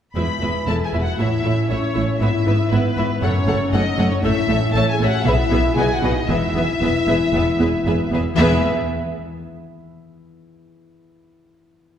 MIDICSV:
0, 0, Header, 1, 8, 480
1, 0, Start_track
1, 0, Key_signature, 4, "major"
1, 0, Tempo, 509771
1, 149, Time_signature, 4, 2, 24, 8
1, 4948, Tempo, 517241
1, 11195, End_track
2, 0, Start_track
2, 0, Title_t, "Violin section"
2, 0, Program_c, 0, 48
2, 149, Note_on_c, 0, 83, 58
2, 599, Note_off_c, 0, 83, 0
2, 634, Note_on_c, 0, 81, 54
2, 698, Note_off_c, 0, 81, 0
2, 795, Note_on_c, 0, 80, 44
2, 860, Note_off_c, 0, 80, 0
2, 958, Note_on_c, 0, 78, 48
2, 1116, Note_off_c, 0, 78, 0
2, 1120, Note_on_c, 0, 76, 53
2, 1591, Note_off_c, 0, 76, 0
2, 1597, Note_on_c, 0, 73, 53
2, 2067, Note_off_c, 0, 73, 0
2, 2069, Note_on_c, 0, 76, 57
2, 2542, Note_off_c, 0, 76, 0
2, 2555, Note_on_c, 0, 71, 55
2, 3034, Note_on_c, 0, 73, 68
2, 3035, Note_off_c, 0, 71, 0
2, 3504, Note_off_c, 0, 73, 0
2, 3514, Note_on_c, 0, 75, 69
2, 3865, Note_off_c, 0, 75, 0
2, 3867, Note_on_c, 0, 73, 59
2, 3916, Note_off_c, 0, 73, 0
2, 3976, Note_on_c, 0, 76, 77
2, 4451, Note_off_c, 0, 76, 0
2, 4455, Note_on_c, 0, 81, 74
2, 4613, Note_on_c, 0, 80, 67
2, 4618, Note_off_c, 0, 81, 0
2, 4771, Note_on_c, 0, 78, 70
2, 4777, Note_off_c, 0, 80, 0
2, 4934, Note_on_c, 0, 76, 77
2, 4936, Note_off_c, 0, 78, 0
2, 5414, Note_on_c, 0, 80, 78
2, 5419, Note_off_c, 0, 76, 0
2, 5577, Note_off_c, 0, 80, 0
2, 5580, Note_on_c, 0, 78, 64
2, 5744, Note_off_c, 0, 78, 0
2, 5747, Note_on_c, 0, 75, 62
2, 5907, Note_on_c, 0, 76, 76
2, 5908, Note_off_c, 0, 75, 0
2, 7607, Note_off_c, 0, 76, 0
2, 7851, Note_on_c, 0, 76, 87
2, 8117, Note_off_c, 0, 76, 0
2, 11195, End_track
3, 0, Start_track
3, 0, Title_t, "Violin section"
3, 0, Program_c, 1, 48
3, 148, Note_on_c, 1, 71, 38
3, 148, Note_on_c, 1, 76, 39
3, 223, Note_off_c, 1, 71, 0
3, 223, Note_off_c, 1, 76, 0
3, 390, Note_on_c, 1, 76, 34
3, 392, Note_on_c, 1, 71, 37
3, 465, Note_off_c, 1, 76, 0
3, 467, Note_off_c, 1, 71, 0
3, 635, Note_on_c, 1, 71, 39
3, 636, Note_on_c, 1, 76, 38
3, 710, Note_off_c, 1, 71, 0
3, 711, Note_off_c, 1, 76, 0
3, 882, Note_on_c, 1, 76, 37
3, 883, Note_on_c, 1, 71, 38
3, 957, Note_off_c, 1, 76, 0
3, 958, Note_off_c, 1, 71, 0
3, 1127, Note_on_c, 1, 73, 44
3, 1131, Note_on_c, 1, 76, 43
3, 1203, Note_off_c, 1, 73, 0
3, 1207, Note_off_c, 1, 76, 0
3, 1363, Note_on_c, 1, 73, 39
3, 1363, Note_on_c, 1, 76, 37
3, 1438, Note_off_c, 1, 73, 0
3, 1439, Note_off_c, 1, 76, 0
3, 1603, Note_on_c, 1, 73, 40
3, 1605, Note_on_c, 1, 76, 38
3, 1678, Note_off_c, 1, 73, 0
3, 1681, Note_off_c, 1, 76, 0
3, 1839, Note_on_c, 1, 76, 40
3, 1841, Note_on_c, 1, 73, 38
3, 1915, Note_off_c, 1, 76, 0
3, 1916, Note_off_c, 1, 73, 0
3, 2086, Note_on_c, 1, 71, 44
3, 2089, Note_on_c, 1, 76, 44
3, 2161, Note_off_c, 1, 71, 0
3, 2164, Note_off_c, 1, 76, 0
3, 2329, Note_on_c, 1, 71, 40
3, 2330, Note_on_c, 1, 76, 40
3, 2404, Note_off_c, 1, 71, 0
3, 2405, Note_off_c, 1, 76, 0
3, 2560, Note_on_c, 1, 71, 45
3, 2561, Note_on_c, 1, 76, 46
3, 2636, Note_off_c, 1, 71, 0
3, 2636, Note_off_c, 1, 76, 0
3, 2801, Note_on_c, 1, 76, 46
3, 2804, Note_on_c, 1, 71, 44
3, 2876, Note_off_c, 1, 76, 0
3, 2880, Note_off_c, 1, 71, 0
3, 3038, Note_on_c, 1, 73, 48
3, 3039, Note_on_c, 1, 78, 50
3, 3113, Note_off_c, 1, 73, 0
3, 3114, Note_off_c, 1, 78, 0
3, 3274, Note_on_c, 1, 78, 50
3, 3277, Note_on_c, 1, 73, 47
3, 3349, Note_off_c, 1, 78, 0
3, 3352, Note_off_c, 1, 73, 0
3, 3517, Note_on_c, 1, 73, 49
3, 3517, Note_on_c, 1, 78, 54
3, 3592, Note_off_c, 1, 73, 0
3, 3592, Note_off_c, 1, 78, 0
3, 3750, Note_on_c, 1, 73, 50
3, 3756, Note_on_c, 1, 78, 49
3, 3825, Note_off_c, 1, 73, 0
3, 3831, Note_off_c, 1, 78, 0
3, 3999, Note_on_c, 1, 73, 61
3, 4003, Note_on_c, 1, 76, 57
3, 4075, Note_off_c, 1, 73, 0
3, 4078, Note_off_c, 1, 76, 0
3, 4237, Note_on_c, 1, 73, 53
3, 4237, Note_on_c, 1, 76, 52
3, 4312, Note_off_c, 1, 73, 0
3, 4313, Note_off_c, 1, 76, 0
3, 4483, Note_on_c, 1, 73, 56
3, 4483, Note_on_c, 1, 76, 59
3, 4558, Note_off_c, 1, 73, 0
3, 4558, Note_off_c, 1, 76, 0
3, 4730, Note_on_c, 1, 73, 53
3, 4731, Note_on_c, 1, 76, 55
3, 4805, Note_off_c, 1, 73, 0
3, 4806, Note_off_c, 1, 76, 0
3, 4963, Note_on_c, 1, 71, 64
3, 4965, Note_on_c, 1, 76, 58
3, 5037, Note_off_c, 1, 71, 0
3, 5039, Note_off_c, 1, 76, 0
3, 5202, Note_on_c, 1, 76, 54
3, 5203, Note_on_c, 1, 71, 54
3, 5277, Note_off_c, 1, 71, 0
3, 5277, Note_off_c, 1, 76, 0
3, 5445, Note_on_c, 1, 75, 51
3, 5448, Note_on_c, 1, 71, 53
3, 5519, Note_off_c, 1, 75, 0
3, 5522, Note_off_c, 1, 71, 0
3, 5673, Note_on_c, 1, 75, 49
3, 5679, Note_on_c, 1, 71, 47
3, 5748, Note_off_c, 1, 75, 0
3, 5753, Note_off_c, 1, 71, 0
3, 5925, Note_on_c, 1, 71, 50
3, 5927, Note_on_c, 1, 76, 54
3, 5999, Note_off_c, 1, 71, 0
3, 6001, Note_off_c, 1, 76, 0
3, 6170, Note_on_c, 1, 71, 47
3, 6172, Note_on_c, 1, 76, 46
3, 6244, Note_off_c, 1, 71, 0
3, 6246, Note_off_c, 1, 76, 0
3, 6414, Note_on_c, 1, 71, 48
3, 6415, Note_on_c, 1, 76, 51
3, 6488, Note_off_c, 1, 71, 0
3, 6489, Note_off_c, 1, 76, 0
3, 6651, Note_on_c, 1, 76, 46
3, 6652, Note_on_c, 1, 71, 49
3, 6725, Note_off_c, 1, 76, 0
3, 6726, Note_off_c, 1, 71, 0
3, 6897, Note_on_c, 1, 71, 51
3, 6904, Note_on_c, 1, 76, 55
3, 6971, Note_off_c, 1, 71, 0
3, 6978, Note_off_c, 1, 76, 0
3, 7131, Note_on_c, 1, 76, 47
3, 7137, Note_on_c, 1, 71, 46
3, 7206, Note_off_c, 1, 76, 0
3, 7211, Note_off_c, 1, 71, 0
3, 7374, Note_on_c, 1, 71, 48
3, 7374, Note_on_c, 1, 76, 48
3, 7448, Note_off_c, 1, 71, 0
3, 7448, Note_off_c, 1, 76, 0
3, 7629, Note_on_c, 1, 71, 46
3, 7629, Note_on_c, 1, 76, 45
3, 7703, Note_off_c, 1, 71, 0
3, 7704, Note_off_c, 1, 76, 0
3, 7860, Note_on_c, 1, 71, 74
3, 7867, Note_on_c, 1, 76, 71
3, 8122, Note_off_c, 1, 71, 0
3, 8125, Note_off_c, 1, 76, 0
3, 11195, End_track
4, 0, Start_track
4, 0, Title_t, "French horn section"
4, 0, Program_c, 2, 60
4, 161, Note_on_c, 2, 71, 62
4, 606, Note_off_c, 2, 71, 0
4, 631, Note_on_c, 2, 69, 60
4, 794, Note_off_c, 2, 69, 0
4, 802, Note_on_c, 2, 68, 55
4, 953, Note_on_c, 2, 66, 60
4, 960, Note_off_c, 2, 68, 0
4, 1100, Note_on_c, 2, 64, 57
4, 1113, Note_off_c, 2, 66, 0
4, 1581, Note_off_c, 2, 64, 0
4, 1602, Note_on_c, 2, 61, 54
4, 2075, Note_on_c, 2, 64, 72
4, 2080, Note_off_c, 2, 61, 0
4, 2546, Note_off_c, 2, 64, 0
4, 2560, Note_on_c, 2, 59, 68
4, 3038, Note_off_c, 2, 59, 0
4, 3038, Note_on_c, 2, 61, 66
4, 3506, Note_off_c, 2, 61, 0
4, 3526, Note_on_c, 2, 63, 73
4, 3871, Note_off_c, 2, 63, 0
4, 3882, Note_on_c, 2, 61, 73
4, 3974, Note_on_c, 2, 64, 90
4, 3996, Note_off_c, 2, 61, 0
4, 4453, Note_on_c, 2, 69, 88
4, 4460, Note_off_c, 2, 64, 0
4, 4528, Note_off_c, 2, 69, 0
4, 4622, Note_on_c, 2, 68, 83
4, 4781, Note_off_c, 2, 68, 0
4, 4784, Note_on_c, 2, 66, 90
4, 4928, Note_on_c, 2, 64, 84
4, 4946, Note_off_c, 2, 66, 0
4, 5398, Note_on_c, 2, 68, 89
4, 5406, Note_off_c, 2, 64, 0
4, 5572, Note_off_c, 2, 68, 0
4, 5576, Note_on_c, 2, 66, 74
4, 5742, Note_off_c, 2, 66, 0
4, 5747, Note_on_c, 2, 63, 69
4, 5820, Note_off_c, 2, 63, 0
4, 5885, Note_on_c, 2, 64, 80
4, 7562, Note_off_c, 2, 64, 0
4, 7833, Note_on_c, 2, 64, 91
4, 8038, Note_off_c, 2, 64, 0
4, 11195, End_track
5, 0, Start_track
5, 0, Title_t, "Harp"
5, 0, Program_c, 3, 46
5, 139, Note_on_c, 3, 40, 45
5, 393, Note_on_c, 3, 59, 32
5, 631, Note_on_c, 3, 68, 34
5, 878, Note_on_c, 3, 64, 35
5, 1118, Note_on_c, 3, 45, 44
5, 1133, Note_off_c, 3, 40, 0
5, 1136, Note_off_c, 3, 68, 0
5, 1139, Note_off_c, 3, 59, 0
5, 1365, Note_on_c, 3, 61, 35
5, 1597, Note_on_c, 3, 69, 37
5, 1832, Note_off_c, 3, 64, 0
5, 1843, Note_on_c, 3, 64, 35
5, 2074, Note_on_c, 3, 44, 51
5, 2096, Note_off_c, 3, 69, 0
5, 2098, Note_off_c, 3, 45, 0
5, 2101, Note_off_c, 3, 61, 0
5, 2317, Note_on_c, 3, 59, 40
5, 2557, Note_on_c, 3, 71, 41
5, 2783, Note_off_c, 3, 64, 0
5, 2795, Note_on_c, 3, 64, 44
5, 3031, Note_on_c, 3, 42, 57
5, 3053, Note_off_c, 3, 44, 0
5, 3054, Note_off_c, 3, 64, 0
5, 3055, Note_off_c, 3, 59, 0
5, 3055, Note_off_c, 3, 71, 0
5, 3272, Note_on_c, 3, 61, 47
5, 3504, Note_on_c, 3, 69, 45
5, 3751, Note_on_c, 3, 66, 47
5, 3989, Note_on_c, 3, 45, 68
5, 4008, Note_off_c, 3, 42, 0
5, 4009, Note_off_c, 3, 66, 0
5, 4213, Note_off_c, 3, 61, 0
5, 4224, Note_on_c, 3, 61, 47
5, 4447, Note_off_c, 3, 69, 0
5, 4458, Note_on_c, 3, 69, 50
5, 4701, Note_on_c, 3, 64, 52
5, 4941, Note_on_c, 3, 47, 63
5, 4961, Note_off_c, 3, 69, 0
5, 4964, Note_off_c, 3, 61, 0
5, 4966, Note_off_c, 3, 45, 0
5, 5170, Note_off_c, 3, 64, 0
5, 5181, Note_on_c, 3, 64, 48
5, 5187, Note_on_c, 3, 68, 54
5, 5411, Note_off_c, 3, 47, 0
5, 5422, Note_on_c, 3, 47, 56
5, 5442, Note_off_c, 3, 64, 0
5, 5445, Note_off_c, 3, 68, 0
5, 5660, Note_on_c, 3, 63, 41
5, 5669, Note_on_c, 3, 66, 47
5, 5903, Note_on_c, 3, 52, 55
5, 5926, Note_off_c, 3, 47, 0
5, 5926, Note_off_c, 3, 63, 0
5, 5927, Note_off_c, 3, 66, 0
5, 6145, Note_on_c, 3, 64, 44
5, 6381, Note_on_c, 3, 71, 44
5, 6632, Note_on_c, 3, 68, 47
5, 6873, Note_on_c, 3, 59, 49
5, 7106, Note_off_c, 3, 64, 0
5, 7118, Note_on_c, 3, 64, 47
5, 7352, Note_off_c, 3, 71, 0
5, 7363, Note_on_c, 3, 71, 47
5, 7600, Note_off_c, 3, 68, 0
5, 7611, Note_on_c, 3, 68, 43
5, 7806, Note_off_c, 3, 52, 0
5, 7810, Note_on_c, 3, 52, 73
5, 7825, Note_off_c, 3, 59, 0
5, 7828, Note_on_c, 3, 59, 72
5, 7835, Note_off_c, 3, 64, 0
5, 7835, Note_off_c, 3, 68, 0
5, 7847, Note_on_c, 3, 64, 72
5, 7865, Note_on_c, 3, 68, 67
5, 7887, Note_on_c, 3, 76, 69
5, 8114, Note_off_c, 3, 64, 0
5, 8114, Note_off_c, 3, 68, 0
5, 8115, Note_off_c, 3, 52, 0
5, 8115, Note_off_c, 3, 59, 0
5, 8116, Note_off_c, 3, 76, 0
5, 9775, Note_off_c, 3, 71, 0
5, 11195, End_track
6, 0, Start_track
6, 0, Title_t, "Viola section"
6, 0, Program_c, 4, 48
6, 148, Note_on_c, 4, 56, 41
6, 151, Note_on_c, 4, 64, 42
6, 223, Note_off_c, 4, 56, 0
6, 226, Note_off_c, 4, 64, 0
6, 388, Note_on_c, 4, 56, 36
6, 392, Note_on_c, 4, 64, 36
6, 464, Note_off_c, 4, 56, 0
6, 468, Note_off_c, 4, 64, 0
6, 627, Note_on_c, 4, 64, 37
6, 634, Note_on_c, 4, 56, 36
6, 702, Note_off_c, 4, 64, 0
6, 709, Note_off_c, 4, 56, 0
6, 872, Note_on_c, 4, 64, 39
6, 877, Note_on_c, 4, 56, 40
6, 947, Note_off_c, 4, 64, 0
6, 952, Note_off_c, 4, 56, 0
6, 1113, Note_on_c, 4, 57, 40
6, 1114, Note_on_c, 4, 64, 40
6, 1189, Note_off_c, 4, 57, 0
6, 1189, Note_off_c, 4, 64, 0
6, 1360, Note_on_c, 4, 57, 37
6, 1360, Note_on_c, 4, 64, 38
6, 1435, Note_off_c, 4, 64, 0
6, 1436, Note_off_c, 4, 57, 0
6, 1604, Note_on_c, 4, 64, 40
6, 1605, Note_on_c, 4, 57, 37
6, 1679, Note_off_c, 4, 64, 0
6, 1680, Note_off_c, 4, 57, 0
6, 1831, Note_on_c, 4, 64, 40
6, 1836, Note_on_c, 4, 57, 40
6, 1906, Note_off_c, 4, 64, 0
6, 1912, Note_off_c, 4, 57, 0
6, 2079, Note_on_c, 4, 59, 44
6, 2080, Note_on_c, 4, 64, 47
6, 2154, Note_off_c, 4, 59, 0
6, 2156, Note_off_c, 4, 64, 0
6, 2318, Note_on_c, 4, 59, 42
6, 2322, Note_on_c, 4, 64, 44
6, 2393, Note_off_c, 4, 59, 0
6, 2397, Note_off_c, 4, 64, 0
6, 2560, Note_on_c, 4, 59, 47
6, 2561, Note_on_c, 4, 64, 45
6, 2636, Note_off_c, 4, 59, 0
6, 2636, Note_off_c, 4, 64, 0
6, 2790, Note_on_c, 4, 59, 49
6, 2797, Note_on_c, 4, 64, 48
6, 2866, Note_off_c, 4, 59, 0
6, 2872, Note_off_c, 4, 64, 0
6, 3030, Note_on_c, 4, 57, 49
6, 3033, Note_on_c, 4, 69, 49
6, 3106, Note_off_c, 4, 57, 0
6, 3108, Note_off_c, 4, 69, 0
6, 3268, Note_on_c, 4, 57, 45
6, 3272, Note_on_c, 4, 69, 46
6, 3343, Note_off_c, 4, 57, 0
6, 3348, Note_off_c, 4, 69, 0
6, 3511, Note_on_c, 4, 69, 50
6, 3512, Note_on_c, 4, 57, 51
6, 3586, Note_off_c, 4, 69, 0
6, 3588, Note_off_c, 4, 57, 0
6, 3744, Note_on_c, 4, 69, 53
6, 3746, Note_on_c, 4, 57, 52
6, 3819, Note_off_c, 4, 69, 0
6, 3821, Note_off_c, 4, 57, 0
6, 3984, Note_on_c, 4, 57, 60
6, 3986, Note_on_c, 4, 69, 60
6, 4059, Note_off_c, 4, 57, 0
6, 4061, Note_off_c, 4, 69, 0
6, 4213, Note_on_c, 4, 57, 54
6, 4220, Note_on_c, 4, 69, 55
6, 4288, Note_off_c, 4, 57, 0
6, 4295, Note_off_c, 4, 69, 0
6, 4469, Note_on_c, 4, 69, 57
6, 4473, Note_on_c, 4, 57, 58
6, 4544, Note_off_c, 4, 69, 0
6, 4548, Note_off_c, 4, 57, 0
6, 4705, Note_on_c, 4, 57, 57
6, 4708, Note_on_c, 4, 69, 56
6, 4780, Note_off_c, 4, 57, 0
6, 4783, Note_off_c, 4, 69, 0
6, 4954, Note_on_c, 4, 68, 62
6, 4956, Note_on_c, 4, 59, 62
6, 5028, Note_off_c, 4, 68, 0
6, 5030, Note_off_c, 4, 59, 0
6, 5185, Note_on_c, 4, 59, 54
6, 5185, Note_on_c, 4, 68, 53
6, 5259, Note_off_c, 4, 59, 0
6, 5260, Note_off_c, 4, 68, 0
6, 5422, Note_on_c, 4, 66, 53
6, 5425, Note_on_c, 4, 59, 50
6, 5496, Note_off_c, 4, 66, 0
6, 5499, Note_off_c, 4, 59, 0
6, 5656, Note_on_c, 4, 59, 54
6, 5664, Note_on_c, 4, 66, 53
6, 5730, Note_off_c, 4, 59, 0
6, 5738, Note_off_c, 4, 66, 0
6, 5905, Note_on_c, 4, 59, 57
6, 5906, Note_on_c, 4, 68, 55
6, 5980, Note_off_c, 4, 59, 0
6, 5980, Note_off_c, 4, 68, 0
6, 6150, Note_on_c, 4, 59, 48
6, 6150, Note_on_c, 4, 68, 48
6, 6224, Note_off_c, 4, 59, 0
6, 6225, Note_off_c, 4, 68, 0
6, 6394, Note_on_c, 4, 68, 49
6, 6399, Note_on_c, 4, 59, 49
6, 6468, Note_off_c, 4, 68, 0
6, 6473, Note_off_c, 4, 59, 0
6, 6635, Note_on_c, 4, 59, 52
6, 6638, Note_on_c, 4, 68, 51
6, 6710, Note_off_c, 4, 59, 0
6, 6712, Note_off_c, 4, 68, 0
6, 6881, Note_on_c, 4, 59, 51
6, 6886, Note_on_c, 4, 68, 52
6, 6955, Note_off_c, 4, 59, 0
6, 6960, Note_off_c, 4, 68, 0
6, 7114, Note_on_c, 4, 59, 47
6, 7120, Note_on_c, 4, 68, 47
6, 7188, Note_off_c, 4, 59, 0
6, 7194, Note_off_c, 4, 68, 0
6, 7362, Note_on_c, 4, 59, 47
6, 7362, Note_on_c, 4, 68, 51
6, 7436, Note_off_c, 4, 68, 0
6, 7437, Note_off_c, 4, 59, 0
6, 7596, Note_on_c, 4, 68, 50
6, 7599, Note_on_c, 4, 59, 48
6, 7671, Note_off_c, 4, 68, 0
6, 7673, Note_off_c, 4, 59, 0
6, 7839, Note_on_c, 4, 59, 74
6, 7843, Note_on_c, 4, 68, 74
6, 8111, Note_off_c, 4, 59, 0
6, 8112, Note_off_c, 4, 68, 0
6, 11195, End_track
7, 0, Start_track
7, 0, Title_t, "Cello section"
7, 0, Program_c, 5, 48
7, 150, Note_on_c, 5, 40, 43
7, 226, Note_off_c, 5, 40, 0
7, 392, Note_on_c, 5, 40, 39
7, 467, Note_off_c, 5, 40, 0
7, 633, Note_on_c, 5, 40, 43
7, 709, Note_off_c, 5, 40, 0
7, 887, Note_on_c, 5, 40, 41
7, 962, Note_off_c, 5, 40, 0
7, 1124, Note_on_c, 5, 45, 45
7, 1199, Note_off_c, 5, 45, 0
7, 1360, Note_on_c, 5, 45, 42
7, 1435, Note_off_c, 5, 45, 0
7, 1598, Note_on_c, 5, 45, 46
7, 1674, Note_off_c, 5, 45, 0
7, 1842, Note_on_c, 5, 45, 44
7, 1917, Note_off_c, 5, 45, 0
7, 2078, Note_on_c, 5, 44, 48
7, 2153, Note_off_c, 5, 44, 0
7, 2313, Note_on_c, 5, 44, 45
7, 2388, Note_off_c, 5, 44, 0
7, 2554, Note_on_c, 5, 44, 48
7, 2629, Note_off_c, 5, 44, 0
7, 2797, Note_on_c, 5, 44, 48
7, 2872, Note_off_c, 5, 44, 0
7, 3026, Note_on_c, 5, 42, 57
7, 3101, Note_off_c, 5, 42, 0
7, 3266, Note_on_c, 5, 42, 53
7, 3341, Note_off_c, 5, 42, 0
7, 3508, Note_on_c, 5, 42, 58
7, 3584, Note_off_c, 5, 42, 0
7, 3737, Note_on_c, 5, 42, 60
7, 3813, Note_off_c, 5, 42, 0
7, 3980, Note_on_c, 5, 45, 65
7, 4055, Note_off_c, 5, 45, 0
7, 4213, Note_on_c, 5, 45, 57
7, 4289, Note_off_c, 5, 45, 0
7, 4452, Note_on_c, 5, 45, 61
7, 4527, Note_off_c, 5, 45, 0
7, 4693, Note_on_c, 5, 45, 59
7, 4768, Note_off_c, 5, 45, 0
7, 4934, Note_on_c, 5, 47, 64
7, 5008, Note_off_c, 5, 47, 0
7, 5171, Note_on_c, 5, 47, 61
7, 5245, Note_off_c, 5, 47, 0
7, 5413, Note_on_c, 5, 47, 66
7, 5487, Note_off_c, 5, 47, 0
7, 5656, Note_on_c, 5, 47, 63
7, 5730, Note_off_c, 5, 47, 0
7, 5898, Note_on_c, 5, 40, 57
7, 5972, Note_off_c, 5, 40, 0
7, 6144, Note_on_c, 5, 40, 52
7, 6218, Note_off_c, 5, 40, 0
7, 6393, Note_on_c, 5, 40, 52
7, 6467, Note_off_c, 5, 40, 0
7, 6636, Note_on_c, 5, 40, 50
7, 6710, Note_off_c, 5, 40, 0
7, 6872, Note_on_c, 5, 40, 59
7, 6946, Note_off_c, 5, 40, 0
7, 7123, Note_on_c, 5, 40, 54
7, 7198, Note_off_c, 5, 40, 0
7, 7374, Note_on_c, 5, 40, 57
7, 7448, Note_off_c, 5, 40, 0
7, 7606, Note_on_c, 5, 40, 57
7, 7681, Note_off_c, 5, 40, 0
7, 7842, Note_on_c, 5, 40, 75
7, 8112, Note_off_c, 5, 40, 0
7, 11195, End_track
8, 0, Start_track
8, 0, Title_t, "Double bass section"
8, 0, Program_c, 6, 48
8, 152, Note_on_c, 6, 28, 44
8, 227, Note_off_c, 6, 28, 0
8, 388, Note_on_c, 6, 28, 38
8, 463, Note_off_c, 6, 28, 0
8, 629, Note_on_c, 6, 28, 43
8, 704, Note_off_c, 6, 28, 0
8, 878, Note_on_c, 6, 28, 42
8, 954, Note_off_c, 6, 28, 0
8, 1110, Note_on_c, 6, 33, 48
8, 1186, Note_off_c, 6, 33, 0
8, 1358, Note_on_c, 6, 33, 43
8, 1434, Note_off_c, 6, 33, 0
8, 1603, Note_on_c, 6, 33, 44
8, 1678, Note_off_c, 6, 33, 0
8, 1843, Note_on_c, 6, 33, 45
8, 1918, Note_off_c, 6, 33, 0
8, 2081, Note_on_c, 6, 32, 53
8, 2156, Note_off_c, 6, 32, 0
8, 2315, Note_on_c, 6, 32, 44
8, 2390, Note_off_c, 6, 32, 0
8, 2554, Note_on_c, 6, 32, 49
8, 2630, Note_off_c, 6, 32, 0
8, 2794, Note_on_c, 6, 32, 49
8, 2870, Note_off_c, 6, 32, 0
8, 3034, Note_on_c, 6, 30, 59
8, 3109, Note_off_c, 6, 30, 0
8, 3271, Note_on_c, 6, 30, 55
8, 3346, Note_off_c, 6, 30, 0
8, 3515, Note_on_c, 6, 30, 59
8, 3590, Note_off_c, 6, 30, 0
8, 3746, Note_on_c, 6, 30, 59
8, 3822, Note_off_c, 6, 30, 0
8, 3985, Note_on_c, 6, 33, 66
8, 4060, Note_off_c, 6, 33, 0
8, 4220, Note_on_c, 6, 33, 60
8, 4296, Note_off_c, 6, 33, 0
8, 4466, Note_on_c, 6, 33, 69
8, 4542, Note_off_c, 6, 33, 0
8, 4707, Note_on_c, 6, 33, 60
8, 4782, Note_off_c, 6, 33, 0
8, 4956, Note_on_c, 6, 35, 67
8, 5030, Note_off_c, 6, 35, 0
8, 5192, Note_on_c, 6, 35, 63
8, 5266, Note_off_c, 6, 35, 0
8, 5430, Note_on_c, 6, 35, 66
8, 5504, Note_off_c, 6, 35, 0
8, 5668, Note_on_c, 6, 35, 56
8, 5742, Note_off_c, 6, 35, 0
8, 5903, Note_on_c, 6, 28, 62
8, 5978, Note_off_c, 6, 28, 0
8, 6151, Note_on_c, 6, 28, 52
8, 6225, Note_off_c, 6, 28, 0
8, 6397, Note_on_c, 6, 28, 59
8, 6472, Note_off_c, 6, 28, 0
8, 6636, Note_on_c, 6, 28, 54
8, 6710, Note_off_c, 6, 28, 0
8, 6881, Note_on_c, 6, 28, 63
8, 6955, Note_off_c, 6, 28, 0
8, 7128, Note_on_c, 6, 28, 53
8, 7202, Note_off_c, 6, 28, 0
8, 7373, Note_on_c, 6, 28, 61
8, 7447, Note_off_c, 6, 28, 0
8, 7612, Note_on_c, 6, 28, 55
8, 7686, Note_off_c, 6, 28, 0
8, 7849, Note_on_c, 6, 28, 82
8, 8115, Note_off_c, 6, 28, 0
8, 11195, End_track
0, 0, End_of_file